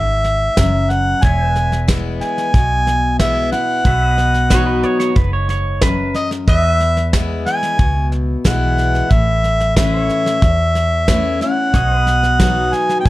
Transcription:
Already playing: fingered electric bass G#1, steel-string acoustic guitar G#2, pedal steel guitar C#5, harmonica E5
0.24 snare
0.57 fingered electric bass F#1, steel-string acoustic guitar F#2, kick, snare, hi-hat pedal
0.90 harmonica F#5, snare
1.22 fingered electric bass E1, steel-string acoustic guitar E2, pedal steel guitar C#5 E5, harmonica G#5, kick, snare
1.50 pedal steel guitar B4
1.56 snare
1.72 snare
1.88 steel-string acoustic guitar E3 G#3 B3 E4, kick, snare, hi-hat pedal
2.21 harmonica G#5, snare
2.38 snare
2.54 fingered electric bass B1, steel-string acoustic guitar B2, kick, snare
2.87 snare
3.19 steel-string acoustic guitar E3 G#3 B3 E4, harmonica E5, kick, snare, hi-hat pedal
3.52 steel-string acoustic guitar B3 E4, harmonica F#5, snare
3.85 fingered electric bass B1, steel-string acoustic guitar B2, pedal steel guitar B4 E5, kick, snare
4.07 pedal steel guitar D#5
4.18 snare
4.34 snare
4.50 steel-string acoustic guitar F#3 B3 D#4 F#4, clean electric guitar C#5, kick, snare, hi-hat pedal
4.67 clean electric guitar B4
4.83 clean electric guitar C#5, snare
5.00 clean electric guitar C#5, snare
5.16 fingered electric bass F#1, clean electric guitar B4, kick, snare
5.33 clean electric guitar C#5
5.49 clean electric guitar C#5, snare
5.81 steel-string acoustic guitar F#2, clean electric guitar B4, kick, snare, hi-hat pedal
6.14 harmonica D#5, snare
6.31 snare
6.47 fingered electric bass E2, steel-string acoustic guitar E2, pedal steel guitar B4 D#5, harmonica E5, kick, snare
6.69 pedal steel guitar E5
6.80 snare
6.97 snare
7.13 steel-string acoustic guitar E3 G#3 B3 E4, kick, snare, hi-hat pedal
7.46 harmonica G#5, snare
7.63 snare
7.79 fingered electric bass C#2, kick, snare
8.12 snare
8.44 fingered electric bass B1, steel-string acoustic guitar E3 G#3 B3 E4, harmonica F#5, kick, snare, hi-hat pedal
8.78 snare
8.95 snare
9.11 fingered electric bass A1, steel-string acoustic guitar A2, harmonica E5, kick, snare
9.44 snare
9.60 snare
9.76 steel-string acoustic guitar E3 A3 C#4 E4, pedal steel guitar B4 E5, harmonica E5, kick, snare, hi-hat pedal
10.01 pedal steel guitar C#5
10.09 snare
10.26 snare
10.42 fingered electric bass E2, steel-string acoustic guitar E2, kick, snare
10.75 snare
11.08 steel-string acoustic guitar E3 A3 C#4 E4, kick, snare, hi-hat pedal
11.41 steel-string acoustic guitar C#4 E4, harmonica F#5, snare
11.74 fingered electric bass B1, steel-string acoustic guitar B2, pedal steel guitar C#5 D#5, kick, snare
11.99 pedal steel guitar B4
12.07 snare
12.23 snare
12.40 steel-string acoustic guitar F#3 B3 D#4 F#4, kick, snare, hi-hat pedal
12.73 harmonica G#5, snare
12.89 snare
13.00 harmonica G5
13.05 fingered electric bass F#2, kick, snare

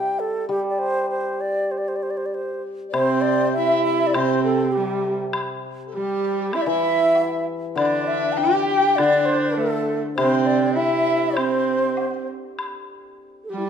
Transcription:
Already playing: hammered dulcimer G3, xiao G5
0.19 xiao A4
0.49 hammered dulcimer G3, xiao G4
0.70 xiao D5
0.79 xiao C5
1.10 xiao C5
1.41 xiao D5
1.71 xiao C5
1.78 xiao D5
1.88 xiao C5
1.96 xiao D5
2.03 xiao C5
2.10 xiao D5
2.17 xiao C5
2.26 xiao D5
2.34 xiao C5
2.88 xiao C5, dizi D5
2.93 hammered dulcimer C3, horsehead fiddle C4, dizi C5, high woodblock
3.21 xiao D5
3.53 xiao E5, dizi E5
3.58 horsehead fiddle E4
3.83 xiao E5, dizi E5
4.07 xiao D5, dizi D5
4.14 hammered dulcimer C3, horsehead fiddle C4, xiao C5, dizi C5, high woodblock
4.43 xiao A4, dizi A4
4.72 xiao G4, dizi G4
4.77 horsehead fiddle G3
5.33 high woodblock
5.87 dizi A4
5.93 horsehead fiddle G3, xiao G4, dizi G4
6.53 horsehead fiddle E4, dizi E5, xiao E5, high woodblock
6.62 xiao D5
6.66 hammered dulcimer E3, horsehead fiddle E4, dizi E5, xiao E5
7.15 low woodblock
7.76 hammered dulcimer D3, horsehead fiddle D4, dizi D5, xiao D5, high woodblock
8.07 xiao E5, dizi E5
8.32 xiao A5
8.37 horsehead fiddle G4, dizi G5, xiao G5
8.68 xiao G5, dizi G5
8.96 hammered dulcimer D3, horsehead fiddle D4, xiao D5, dizi D5, high woodblock
9.26 xiao C5
9.30 dizi C5
9.52 xiao A4, dizi C5
9.57 horsehead fiddle A3, dizi A4
10.16 hammered dulcimer C3, horsehead fiddle C4, xiao C5, dizi C5, high woodblock
10.46 xiao D5
10.75 horsehead fiddle E4, xiao E5, dizi E5
11.30 dizi D5
11.35 horsehead fiddle C4, xiao C5, dizi C5, high woodblock
11.97 low woodblock
12.59 high woodblock
13.44 xiao A4
13.50 horsehead fiddle G3, xiao G4, dizi G4
13.58 dizi E4
13.65 dizi G4

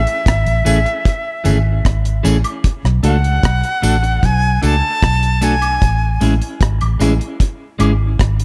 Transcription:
Already playing: flute E5
0.07 closed hi-hat
0.26 fingered electric bass G#1, kick, cross-stick, closed hi-hat
0.46 fingered electric bass A1, closed hi-hat
0.65 fingered electric bass A1, clean electric guitar E3 A3 C#4 G#4, closed hi-hat, tambourine
0.85 muted clean electric guitar stroke, closed hi-hat
1.05 kick, closed hi-hat
1.44 fingered electric bass G#1, clean electric guitar E3 A3 C#4 G#4, closed hi-hat, tambourine
1.85 fingered electric bass G#1, kick, cross-stick, closed hi-hat
2.05 closed hi-hat
2.23 fingered electric bass A1, clean electric guitar E3 A3 C#4 G#4, closed hi-hat, tambourine
2.44 closed hi-hat, high woodblock
2.64 kick, closed hi-hat
2.85 fingered electric bass B1, cross-stick
3.03 fingered electric bass C#2, clean electric guitar A3 D4 F#4 A4, flute F#5, closed hi-hat, tambourine
3.24 closed hi-hat
3.43 fingered electric bass B1, kick, cross-stick, closed hi-hat
3.64 closed hi-hat
3.82 fingered electric bass A1, clean electric guitar A3 D4 F#4 A4, closed hi-hat, tambourine
4.03 muted clean electric guitar stroke, closed hi-hat
4.23 fingered electric bass B1, flute G#5, kick, closed hi-hat
4.62 fingered electric bass C#2, clean electric guitar A3 D4 F#4 A4, flute A5, closed hi-hat, tambourine
5.02 fingered electric bass B1, kick, cross-stick, closed hi-hat
5.23 closed hi-hat
5.41 clean electric guitar A3 D4 F#4 A4, flute G#5, closed hi-hat, tambourine
5.62 closed hi-hat, high woodblock
5.82 fingered electric bass A1, kick, closed hi-hat
6.21 fingered electric bass A1, clean electric guitar G#3 C#4 E4 G#4, closed hi-hat, tambourine
6.42 closed hi-hat
6.61 fingered electric bass G#1, kick, cross-stick, closed hi-hat
6.81 fingered electric bass A1, closed hi-hat, high woodblock
7.00 fingered electric bass A1, clean electric guitar G#3 C#4 E4 G#4, cross-stick, closed hi-hat, tambourine
7.20 muted clean electric guitar stroke, closed hi-hat
7.40 kick, closed hi-hat
7.79 fingered electric bass G#1, clean electric guitar G#3 C#4 E4 G#4, closed hi-hat, tambourine, high woodblock
8.19 fingered electric bass G#1, kick, cross-stick, closed hi-hat
8.40 closed hi-hat

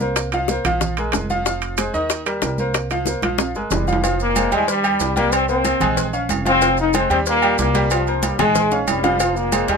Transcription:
Already playing: upright bass C2
0.00 grand piano A#3 A#4 C5, high conga, maracas
0.16 high bongo, high timbale, maracas
0.32 grand piano F3 F4 F5, high bongo, high conga, high timbale, maracas
0.48 grand piano A#3 A#4 C5, high bongo, high conga, maracas
0.64 upright bass A#1, grand piano F3 F4 F5, high conga, low conga, high timbale, maracas
0.81 high bongo, high conga, low conga, maracas
0.97 grand piano G#3 G#4 A#4, high bongo, high conga, high timbale, maracas
1.12 upright bass F1, high bongo, low bongo, high conga, high timbale, low timbale, maracas
1.30 grand piano F3 F4 F5, high bongo, high conga, maracas
1.46 grand piano F3 F4 F5, high bongo, maracas
1.62 high conga, high timbale, maracas
1.77 grand piano G#3 G#4 C5, high bongo, high conga, high timbale, maracas
1.93 upright bass D#2, grand piano D#3 D#4 D#5, high conga, maracas
2.10 high bongo, high conga, high timbale, maracas
2.26 grand piano G3 G4 A#4, high conga, high timbale, maracas
2.42 upright bass C2, grand piano G3 G4 A#4, high bongo, low bongo, high conga, high timbale, low timbale, maracas
2.58 grand piano A#3 A#4 C5, high conga, maracas
2.74 high bongo, high conga, high timbale, maracas
2.90 grand piano F3 F4 F5, high bongo, high conga, high timbale, maracas
3.06 grand piano A#3 A#4 C5, high bongo, high conga, maracas
3.22 upright bass A#1, grand piano F3 F4 F5, high conga, high timbale, maracas
3.38 high bongo, high conga, high timbale, maracas
3.55 upright bass G1, grand piano G#3 G#4 A#4, high bongo, maracas
3.71 upright bass F1, trombone section G2 G3, high bongo, low bongo, low conga, low timbale, maracas
3.87 grand piano F3 F4 F5, high bongo, low conga, maracas
3.93 low timbale
4.03 grand piano F3 F4 F5, trombone section F3 F4, cowbell, high conga, low agogo, maracas
4.20 trombone section A#2 A#3, high conga, maracas
4.36 grand piano G#3 G#4 C5, cowbell, high conga, low agogo, maracas
4.52 upright bass D#2, trombone section G#2 G#3, grand piano G3 G4 G5, cowbell, high conga, low agogo, maracas
4.68 trombone section G2 G3, cowbell, high conga, maracas
4.84 grand piano G3 G4 G5, high conga, low agogo, maracas
5.00 upright bass C2, cowbell, low timbale, maracas
5.16 trombone section A#2 A#3, grand piano G3 G4 G5, cowbell, high conga, maracas
5.32 trombone section C3 C4, cowbell, high conga, low agogo, maracas
5.49 trombone section C3 C4, grand piano A#3 A#4 C5, high conga, maracas
5.65 cowbell, high conga, low agogo, maracas
5.80 upright bass A#1, grand piano G#3 G#4 G#5, cowbell, high conga, low conga, low agogo, maracas
5.97 cowbell, high conga, low conga, maracas
6.13 grand piano C#4 C#5 F5, high conga, maracas
6.29 upright bass F1, cowbell, high conga, low timbale, low agogo, maracas
6.45 trombone section C3 C4, grand piano F3 F4 F5, cowbell, high conga, low agogo, maracas
6.61 grand piano F3 F4 F5, cowbell, low agogo, maracas
6.77 trombone section D#3 D#4, high conga, maracas
6.93 trombone section C3 C4, grand piano G#3 G#4 C5, cowbell, high conga, low agogo, maracas
7.10 upright bass D#2, trombone section C3 C4, grand piano G3 G4 G5, cowbell, high conga, low agogo, maracas
7.26 trombone section A#2 A#3, cowbell, high conga, maracas
7.42 grand piano G3 G4 G5, high conga, low agogo, maracas
7.58 upright bass C2, trombone section A#2 A#3, cowbell, high conga, low timbale, maracas
7.74 grand piano G3 G4 G5, cowbell, high conga, maracas
7.90 trombone section F3 F4, cowbell, low agogo, maracas
8.07 grand piano A#3 A#4 C5, high conga, maracas
8.23 trombone section G2 G3, cowbell, high conga, low agogo, maracas
8.39 upright bass A#1, trombone section G#2 G#3, grand piano G#3 G#4 G#5, cowbell, high bongo, high conga, low conga, low agogo, maracas
8.55 cowbell, high conga, low conga, maracas
8.71 grand piano C#4 C#5 F5, low bongo, high conga, maracas
8.87 upright bass F1, trombone section G2 G3, cowbell, high conga, low timbale, low agogo, maracas
9.03 grand piano F3 F4 F5, cowbell, low bongo, high conga, low agogo, maracas
9.19 grand piano F3 F4 F5, trombone section F3 F4, cowbell, high conga, low agogo, maracas
9.35 trombone section A#2 A#3, high conga, maracas
9.52 grand piano G#3 G#4 C5, cowbell, high conga, low agogo, maracas
9.68 upright bass D#2, trombone section G#2 G#3, grand piano G3 G4 G5, cowbell, high conga, low agogo, maracas

